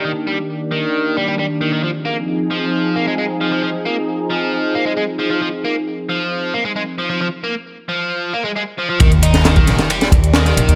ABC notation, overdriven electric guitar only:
X:1
M:4/4
L:1/16
Q:1/4=134
K:Fdor
V:1 name="Overdriven electric guitar" clef=bass
E, z G, z3 E,4 G, G, G, z E, E, | F, z B, z3 F,4 B, A, A, z F, F, | F, z B, z3 F,4 B, A, A, z F, F, | F, z B, z3 F,4 B, A, A, z F, F, |
F, z B, z3 F,4 B, A, A, z F, F, | E, z E2 E, E,3 G, G, z2 E, E,3 |]